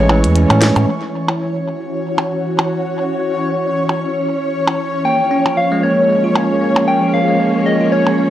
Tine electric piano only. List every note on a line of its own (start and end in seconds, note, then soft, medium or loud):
0.00 0.09 E3 medium
0.00 0.89 G#3 loud
0.00 0.61 A3 medium
0.00 0.35 C#4 loud
0.00 0.90 E4 medium
0.09 0.17 E3 loud
0.35 0.43 C#4 medium
0.50 0.60 C#4 loud
0.61 0.69 A3 medium
5.05 5.18 A#3 medium
5.31 5.44 C#4 loud
5.46 5.52 F3 medium
5.57 5.65 F3 medium
5.72 5.78 G#3 loud
5.83 5.96 A#3 medium
6.09 6.23 G#3 medium
6.24 6.34 F4 medium
6.35 6.43 C#4 loud
6.62 6.74 A#3 medium
6.88 7.00 C#4 loud
7.02 7.08 F3 medium
7.14 7.21 F3 medium
7.28 7.34 G#3 loud
7.40 7.53 A#3 medium
7.66 7.80 G#3 medium
7.81 7.90 F4 medium
7.92 8.00 C#4 loud
8.18 8.30 A#3 medium